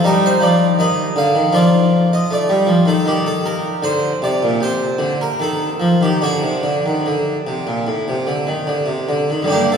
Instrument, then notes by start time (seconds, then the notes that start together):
harpsichord
0.04 G3 D#4 A#4
0.26 C5
0.41 F3 D5
0.79 D#3 D#5
1.16 D3 F5
1.35 D#3
1.53 F3 F4 D5
2.13 D#5
2.31 A3 D5
2.49 G3
2.67 F3
2.86 D#3 A4
3.06 D#3 G4
3.26 A4
3.46 A#4
3.83 D3 C5
4.22 C3 D5
4.43 A#2
4.60 C3 C5
4.99 D3
5.21 A#4
5.40 D#3 A4
5.80 F3
6.01 D#3 G4
6.21 D3 D4 F#4
6.43 C3
6.63 D3
6.86 D#3
7.06 D3
7.47 C3
7.67 A#2
7.87 A2
8.08 C3
8.27 D3
8.47 D#3
8.67 D3
8.86 C3
9.09 D3
9.30 D#3
9.43 G2 D3
9.48 D4 G4
9.52 A#3
9.72 C4 A4